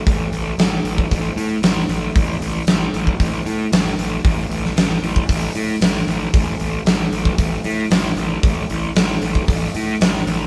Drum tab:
HH |o-o-o-o-o-o-o-o-|o-o-o-o-o-o-o-o-|o-o-o-o-o-o-o-o-|o-o-o-o-o-o-o-o-|
SD |----o-------o---|----o-------oo--|---oo-------o---|----o-------o---|
BD |o------oo-------|o------oo-------|o------oo-------|o------oo-------|

HH |o-o-o-o-o-o-o-o-|
SD |----o-------o---|
BD |o------oo-------|